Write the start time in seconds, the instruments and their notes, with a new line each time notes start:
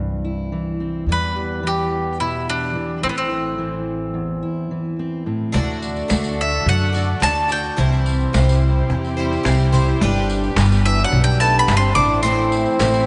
Already playing: upright bass C2, steel-string acoustic guitar G2 E3 C4
0.24 steel-string acoustic guitar E4
0.52 steel-string acoustic guitar E3
0.80 steel-string acoustic guitar C4
1.06 upright bass E2, steel-string acoustic guitar E2 E3 G3 B3
1.11 steel-string acoustic guitar G4, mandolin B4
1.36 steel-string acoustic guitar G4
1.63 steel-string acoustic guitar E3 B3
1.67 mandolin G4
2.20 steel-string acoustic guitar B2, mandolin E4
2.48 mandolin D4, steel-string acoustic guitar G4
2.75 steel-string acoustic guitar E3
3.03 upright bass A1, steel-string acoustic guitar A2 E3 A3 C4 E4, mandolin C4
3.09 mandolin B3
3.18 mandolin C4
3.31 steel-string acoustic guitar E4
3.58 steel-string acoustic guitar E3 C4
4.14 steel-string acoustic guitar E2
4.42 steel-string acoustic guitar E4
4.71 steel-string acoustic guitar E3
4.99 steel-string acoustic guitar C4
5.26 steel-string acoustic guitar A2 C4
5.52 upright bass D2, twelve-string acoustic guitar D3 A3 D4 F#4 D5, string section D3 F#4 A4, cajon bass, cajon slap
5.56 string section D4
5.82 cajon slap, tambourine
5.96 tambourine
6.08 upright bass D2, twelve-string acoustic guitar A3 D4 F#4 D5, cajon slap, tambourine
6.24 tambourine
6.38 mandolin E5, cajon slap
6.53 cajon slap
6.66 upright bass F#2, mandolin F#5, cajon bass, cajon slap
6.80 tambourine
6.93 twelve-string acoustic guitar D4 F#4 D5, cajon slap, tambourine
7.20 upright bass D2, twelve-string acoustic guitar A3 D4 F#4 D5, mandolin A5, cajon slap, tambourine
7.36 tambourine
7.48 twelve-string acoustic guitar D4 F#4 D5, mandolin G5, cajon slap, tambourine
7.64 cajon slap
7.76 upright bass C2, twelve-string acoustic guitar C3 E3 G3 C4 E4 C5, string section C3 C4 E4 G4, cajon bass, cajon slap
7.92 tambourine
8.06 tambourine
8.21 cajon slap, tambourine
8.33 upright bass C2, twelve-string acoustic guitar G3 C4 E4 C5, cajon slap, tambourine
8.49 tambourine
8.62 cajon slap
8.76 cajon slap
8.90 upright bass E2, cajon bass, cajon slap
9.05 tambourine
9.17 twelve-string acoustic guitar G3 C4 E4 C5, cajon slap
9.32 tambourine
9.43 upright bass C2, twelve-string acoustic guitar G3 C4 E4 C5, cajon slap, tambourine
9.60 tambourine
9.72 twelve-string acoustic guitar G3 C4 E4 C5, cajon bass, cajon slap, tambourine
10.01 upright bass G1, twelve-string acoustic guitar G3 D4 G4 B4, string section B3 D4, cajon bass, cajon slap
10.16 tambourine
10.29 cajon slap, tambourine
10.43 cajon slap, tambourine
10.56 upright bass G1, twelve-string acoustic guitar G3 D4 G4, cajon slap, clap, tambourine
10.61 twelve-string acoustic guitar B4
10.72 tambourine
10.85 trombone E3, mandolin E5, cajon slap
10.99 cajon slap
11.04 trombone F#3, mandolin F#5
11.12 upright bass B1, cajon bass, cajon slap
11.22 trombone G3, mandolin G5
11.27 tambourine
11.40 trombone A3, twelve-string acoustic guitar D4 G4 B4, mandolin A5, cajon slap, tambourine
11.55 trombone B3, tambourine
11.59 mandolin B5
11.67 upright bass G1, twelve-string acoustic guitar G3 D4 G4 B4, cajon slap, clap, tambourine
11.77 trombone C4, mandolin C6
11.83 tambourine
11.94 upright bass A1, string section A3 C4 E4, trombone D4, twelve-string acoustic guitar E4 C5, mandolin D6, cajon bass, cajon slap, tambourine
11.99 twelve-string acoustic guitar A3 C4
12.23 twelve-string acoustic guitar A2 E3 A3 C4 E4 C5, trombone C4, mandolin C6, cajon slap, tambourine
12.52 cajon slap, tambourine
12.66 tambourine
12.79 upright bass A1, twelve-string acoustic guitar A3 C4 E4 C5, cajon slap, clap, tambourine
12.94 tambourine